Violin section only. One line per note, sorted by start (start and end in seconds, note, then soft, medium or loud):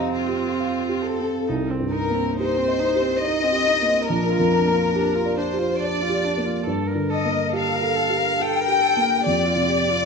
0.12 1.03 F4 medium
1.02 1.47 A4 medium
1.92 2.32 A#4 medium
2.37 3.23 C5 loud
3.23 4.08 D#5 loud
4.08 5.35 A#4 loud
5.39 5.81 C5 medium
5.81 6.67 D5 medium
7.11 7.51 D#5 medium
7.55 8.40 F5 medium
8.40 9.25 G5 loud
9.24 10.05 D5 loud